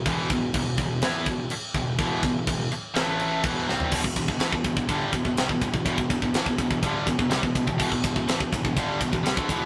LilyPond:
<<
  \new Staff \with { instrumentName = "Distorted electric guitar" } { \clef bass \time 4/4 \key e \minor \tempo 4 = 124 <e, b, e>8 <e, b,>8 <e, b,>8 <e, b,>8 <e b e'>8 <e, b,>8 r8 <e, b,>8 | <e, b, e>8 <e, b,>8 <e, b,>8 r8 <a, e a>4 <e, b, e>8 <c g c'>8 | <e, b,>16 <e, b,>16 <e, b,>16 <e, b,>16 <a, e>16 <e, b,>16 <e, b,>16 <e, b,>16 <g, d g>8 <e, b,>16 <e, b,>16 <c g>16 <e, b,>16 <e, b,>16 <e, b,>16 | <e, b,>16 <e, b,>16 <e, b,>16 <e, b,>16 <a, e>16 <e, b,>16 <e, b,>16 <e, b,>16 <g, d g>8 <e, b,>16 <e, b,>16 <c g>16 <e, b,>16 <e, b,>16 <e, b,>16 |
<e, b,>16 <e, b,>16 <e, b,>16 <e, b,>16 <a, e>16 <e, b,>16 <e, b,>16 <e, b,>16 <g, d g>8 <e, b,>16 <e, b,>16 <c g>16 <d a>16 <e, b, e>8 | }
  \new Staff \with { instrumentName = "Picked electric bass" } { \clef bass \time 4/4 \key e \minor e,,8 e,,8 e,,8 e,,8 e,8 e,,8 r8 e,,8 | e,,8 e,,8 e,,8 r8 a,,4 e,,8 c,8 | e,,16 e,,16 e,,16 e,,16 a,,16 e,,16 e,,16 e,,16 g,,8 e,,16 e,,16 c,16 e,,16 e,,16 e,,16 | e,,16 e,,16 e,,16 e,,16 a,,16 e,,16 e,,16 e,,16 g,,8 e,,16 e,,16 c,16 e,,16 e,,16 e,,16 |
e,,16 e,,16 e,,16 e,,16 a,,16 e,,16 e,,16 e,,16 g,,8 e,,16 e,,16 c,16 d,16 e,,8 | }
  \new DrumStaff \with { instrumentName = "Drums" } \drummode { \time 4/4 <cymc bd>8 <cymc bd>8 <cymc bd>8 <cymc bd>8 <cymc sn>8 <cymc bd>8 cymc8 <cymc bd>8 | <cymc bd>8 <cymc bd>8 <cymc bd>8 cymc8 <cymc sn>8 cymc8 <cymc bd>8 sn16 tomfh16 | <cymc bd>16 bd16 <bd cymr>16 bd16 <cymr sn>16 bd16 <bd cymr>16 bd16 <bd cymr>8 <bd cymr>16 bd16 <cymr sn>16 bd16 <bd cymr>16 bd16 | <bd cymr>16 bd16 <bd cymr>16 bd16 <cymr sn>16 bd16 <bd cymr>16 bd16 <bd cymr>8 <bd cymr>16 bd16 <cymr sn>16 bd16 <bd cymr>16 bd16 |
<cymc bd>16 bd16 <bd cymr>16 bd16 <cymr sn>16 bd16 <bd cymr>16 bd16 <bd cymr>8 <bd cymr>16 bd16 <cymr sn>16 bd16 <bd cymr>8 | }
>>